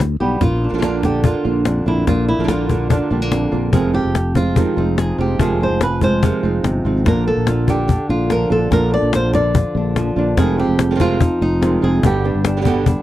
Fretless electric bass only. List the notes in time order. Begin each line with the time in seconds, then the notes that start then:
0.00 D2
0.20 B1
0.41 A#1
0.72 A#1
1.45 A#1
1.86 A#1
2.08 A#1
2.39 A#1
3.11 A#1
3.53 A#1
3.73 F1
4.04 F1
4.77 F1
5.18 F1
5.39 F1
5.70 F1
6.43 F1
6.63 G1
6.85 G#1
7.05 A#1
7.36 A#1
8.09 A#1
8.50 A#1
8.71 A#1
9.02 A#1
9.75 A#1
10.16 A#1
10.37 F1
10.68 F1
11.41 F1
11.83 F1
12.03 G1
12.35 G1